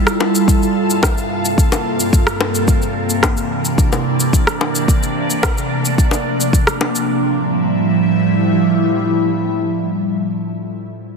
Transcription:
0.00 0.45 G3 medium
0.00 0.45 E4 medium
0.00 2.64 F4 medium
0.00 2.63 A4 medium
0.07 cross-stick medium
0.07 shaker soft
0.20 high bongo medium
0.35 shaker medium
0.47 2.66 G2 medium
0.47 5.94 C3 medium
0.47 7.04 A#3 medium
0.47 kick medium
0.47 shaker soft
0.63 shaker soft
0.90 shaker medium
1.03 kick medium
1.03 cross-stick medium
1.03 high bongo medium
1.03 shaker soft
1.18 shaker soft
1.45 shaker medium
1.58 kick medium
1.58 shaker soft
1.72 high bongo medium
1.72 shaker soft
2.00 shaker medium
2.13 kick medium
2.13 shaker soft
2.27 cross-stick medium
2.27 shaker soft
2.41 high bongo medium
2.55 shaker medium
2.68 4.86 E3 medium
2.68 7.05 D4 medium
2.68 kick medium
2.68 shaker soft
2.82 shaker soft
3.10 shaker medium
3.23 kick medium
3.23 cross-stick medium
3.23 high bongo medium
3.23 shaker soft
3.37 shaker soft
3.65 shaker medium
3.78 kick medium
3.78 shaker soft
3.92 high bongo medium
3.92 shaker soft
4.20 shaker medium
4.33 kick medium
4.33 shaker soft
4.47 cross-stick medium
4.47 shaker soft
4.61 high bongo medium
4.75 shaker medium
4.88 5.97 A3 medium
4.88 kick medium
4.88 shaker soft
5.03 shaker soft
5.30 shaker medium
5.43 kick medium
5.43 cross-stick medium
5.43 high bongo medium
5.43 shaker soft
5.58 shaker soft
5.85 shaker medium
5.98 7.08 C3 medium
5.98 7.07 F3 medium
5.98 kick medium
5.98 shaker soft
6.11 high bongo medium
6.11 shaker soft
6.41 shaker medium
6.53 kick medium
6.53 shaker soft
6.67 cross-stick medium
6.67 shaker soft
6.81 high bongo medium
6.95 shaker medium
7.07 10.04 A2 medium
7.07 10.04 F3 medium
7.07 10.04 G3 medium
7.07 10.04 E4 medium

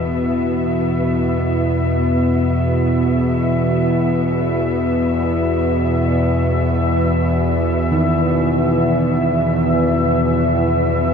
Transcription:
0.00 11.14 E2 medium
0.00 3.10 A2 medium
0.00 11.14 B2 medium
0.00 11.14 B3 medium
0.00 11.14 E5 medium
5.92 11.14 E3 medium
5.92 11.14 E5 medium
7.92 11.14 D#3 medium

